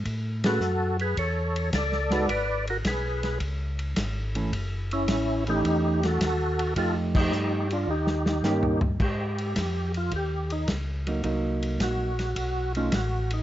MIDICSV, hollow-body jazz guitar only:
0, 0, Header, 1, 2, 480
1, 0, Start_track
1, 0, Tempo, 559701
1, 49, Time_signature, 4, 2, 24, 8
1, 11514, End_track
2, 0, Start_track
2, 0, Title_t, "Hollow-body jazz guitar"
2, 0, Program_c, 0, 26
2, 384, Note_on_c, 0, 57, 61
2, 388, Note_on_c, 0, 61, 65
2, 388, Note_on_c, 0, 68, 68
2, 396, Note_on_c, 0, 71, 70
2, 516, Note_off_c, 0, 57, 0
2, 517, Note_off_c, 0, 61, 0
2, 518, Note_off_c, 0, 68, 0
2, 522, Note_off_c, 0, 71, 0
2, 1812, Note_on_c, 0, 56, 60
2, 1816, Note_on_c, 0, 66, 74
2, 1817, Note_on_c, 0, 63, 62
2, 1821, Note_on_c, 0, 71, 74
2, 1948, Note_off_c, 0, 56, 0
2, 1950, Note_off_c, 0, 66, 0
2, 1951, Note_off_c, 0, 63, 0
2, 1952, Note_off_c, 0, 71, 0
2, 3732, Note_on_c, 0, 52, 57
2, 3738, Note_on_c, 0, 61, 65
2, 3740, Note_on_c, 0, 57, 60
2, 3867, Note_off_c, 0, 52, 0
2, 3870, Note_off_c, 0, 61, 0
2, 3871, Note_off_c, 0, 57, 0
2, 4698, Note_on_c, 0, 52, 70
2, 4702, Note_on_c, 0, 57, 73
2, 4709, Note_on_c, 0, 61, 69
2, 5294, Note_off_c, 0, 52, 0
2, 5296, Note_off_c, 0, 57, 0
2, 5300, Note_off_c, 0, 61, 0
2, 5798, Note_on_c, 0, 53, 57
2, 5803, Note_on_c, 0, 57, 72
2, 5804, Note_on_c, 0, 63, 66
2, 5810, Note_on_c, 0, 67, 69
2, 6545, Note_off_c, 0, 53, 0
2, 6547, Note_off_c, 0, 57, 0
2, 6548, Note_off_c, 0, 63, 0
2, 6551, Note_off_c, 0, 67, 0
2, 7238, Note_on_c, 0, 51, 79
2, 7243, Note_on_c, 0, 58, 85
2, 7245, Note_on_c, 0, 61, 80
2, 7250, Note_on_c, 0, 67, 86
2, 7538, Note_off_c, 0, 51, 0
2, 7541, Note_off_c, 0, 58, 0
2, 7542, Note_off_c, 0, 61, 0
2, 7544, Note_off_c, 0, 67, 0
2, 9492, Note_on_c, 0, 54, 58
2, 9502, Note_on_c, 0, 58, 61
2, 9505, Note_on_c, 0, 63, 66
2, 9625, Note_off_c, 0, 54, 0
2, 9631, Note_off_c, 0, 58, 0
2, 9635, Note_off_c, 0, 63, 0
2, 9636, Note_on_c, 0, 54, 65
2, 9641, Note_on_c, 0, 58, 68
2, 9649, Note_on_c, 0, 63, 79
2, 10388, Note_off_c, 0, 54, 0
2, 10390, Note_off_c, 0, 58, 0
2, 10394, Note_off_c, 0, 63, 0
2, 10948, Note_on_c, 0, 57, 66
2, 10952, Note_on_c, 0, 61, 79
2, 10955, Note_on_c, 0, 63, 73
2, 11078, Note_off_c, 0, 57, 0
2, 11080, Note_off_c, 0, 61, 0
2, 11082, Note_off_c, 0, 63, 0
2, 11514, End_track
0, 0, End_of_file